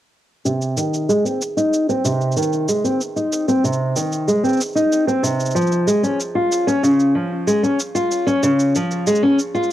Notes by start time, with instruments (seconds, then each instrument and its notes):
0.45 steel-string acoustic guitar C3, cabasa
0.62 cabasa
0.77 steel-string acoustic guitar D#3, cabasa
0.94 cabasa
1.09 steel-string acoustic guitar G#3, cabasa
1.25 steel-string acoustic guitar C4, cabasa
1.42 cabasa
1.57 steel-string acoustic guitar D#4, cabasa
1.73 cabasa
1.89 steel-string acoustic guitar C4, cabasa
2.05 steel-string acoustic guitar C3, cabasa
2.21 cabasa
2.32 cabasa
2.36 steel-string acoustic guitar D#3, cabasa
2.42 cabasa
2.53 cabasa
2.68 steel-string acoustic guitar G#3, cabasa
2.84 steel-string acoustic guitar C4, cabasa
3.01 cabasa
3.16 steel-string acoustic guitar D#4, cabasa
3.33 cabasa
3.48 steel-string acoustic guitar C4, cabasa
3.64 steel-string acoustic guitar C3, cabasa
3.73 cabasa
3.96 steel-string acoustic guitar D#3, cabasa
4.12 cabasa
4.28 steel-string acoustic guitar G#3, cabasa
4.43 steel-string acoustic guitar C4, cabasa
4.49 cabasa
4.53 cabasa
4.57 cabasa
4.61 cabasa
4.65 cabasa
4.69 cabasa
4.73 steel-string acoustic guitar D#4, cabasa
4.77 cabasa
4.92 cabasa
5.07 steel-string acoustic guitar C4, cabasa
5.23 steel-string acoustic guitar C3, cabasa
5.40 cabasa
5.45 cabasa
5.51 cabasa
5.55 steel-string acoustic guitar F3, cabasa
5.61 cabasa
5.67 cabasa
5.72 cabasa
5.87 steel-string acoustic guitar G#3, cabasa
6.03 steel-string acoustic guitar C#4, cabasa
6.20 cabasa
6.35 steel-string acoustic guitar F4
6.52 cabasa
6.67 steel-string acoustic guitar C#4, cabasa
6.83 steel-string acoustic guitar C#3, cabasa
7.00 cabasa
7.15 steel-string acoustic guitar F3
7.47 steel-string acoustic guitar G#3, cabasa
7.63 steel-string acoustic guitar C#4, cabasa
7.80 cabasa
7.95 steel-string acoustic guitar F4, cabasa
8.12 cabasa
8.27 steel-string acoustic guitar C#4, cabasa
8.43 steel-string acoustic guitar C#3, cabasa
8.60 cabasa
8.75 steel-string acoustic guitar F3, cabasa
8.91 cabasa
9.07 steel-string acoustic guitar G#3, cabasa
9.15 cabasa
9.23 steel-string acoustic guitar C#4
9.39 cabasa
9.55 steel-string acoustic guitar F4, cabasa
9.63 cabasa